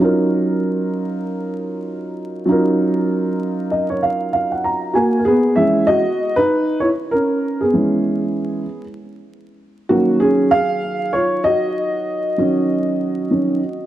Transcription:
upright piano
Already playing: F#3
0.00 C#4 D#4 F4
0.04 A#4
2.45 F#3 C#4 D#4
2.50 F4 A#4
3.71 D#5
3.90 C#5
4.03 F5
4.33 F5
4.52 F#5
4.64 A#5
4.94 A#3 F#4 G#5
5.19 A#4
5.25 B3 G#4
5.56 E3 G#3 C#4 G#4 E5
5.87 F#4 D#5
6.36 D#4 B4
6.80 E4 C#5
7.11 C#4 A#4
7.61 B3 G#4
7.73 E3 G#3 C#4
9.89 D#3 F#3 A#3 C#4 F#4
10.20 C#4 G#4
10.51 G#4 F5
11.13 F4 C#5
11.44 F#4 D#5
12.38 D#3 F#3 C#4
13.31 D#3 F#3 C#4

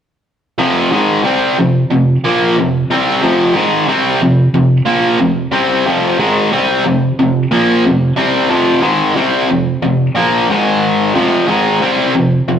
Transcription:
overdriven electric guitar
0.58 F2 C3 F3
0.92 G#2 D#3 G#3
1.24 C3 G3 C4
1.59 F2 C3
1.91 F2 C3
2.25 A#2 F3 A#3
2.59 F2 C3
2.90 C3 G3 C4
3.22 F2 C3 F3
3.54 G#2 D#3 G#3
3.88 C3 G3 C4
4.21 F2 C3
4.54 F2 C3
4.86 A#2 F3 A#3
5.19 F2 C3
5.52 C3 G3 C4
5.86 F2 C3 F3
6.19 G#2 D#3 G#3
6.52 C3 G3 C4
6.85 F2 C3
7.19 F2 C3
7.51 A#2 F3 A#3
7.86 F2 C3
8.17 C3 G3 C4
8.49 F2 C3 F3
8.82 G#2 D#3 G#3
9.15 C3 G3 C4
9.49 F2 C3
9.82 F2 C3
10.15 A#2 F3 A#3
10.49 G#2 D#3 G#3
11.15 F2 C3 F3
11.47 G#2 D#3 G#3
11.80 C3 G3 C4
12.14 F2 C3
12.48 F2 C3

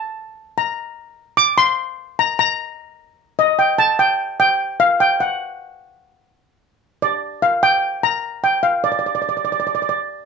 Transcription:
steel pan
0.58 A#5
1.37 D6
1.58 C6
2.19 A#5
2.39 A#5
3.39 D#5
3.59 G5
3.78 A5
3.99 G5
4.40 G5
4.80 F5
5.00 G5
5.20 F#5
7.02 D5
7.42 F5
7.63 G5
8.03 A#5
8.44 G5
8.63 F5
8.84 D5
8.92 D5
8.99 D5
9.06 D5
9.15 D5
9.22 D5
9.29 D5
9.37 D5
9.45 D5
9.52 D5
9.60 D5
9.67 D5
9.75 D5
9.82 D5
9.89 D5

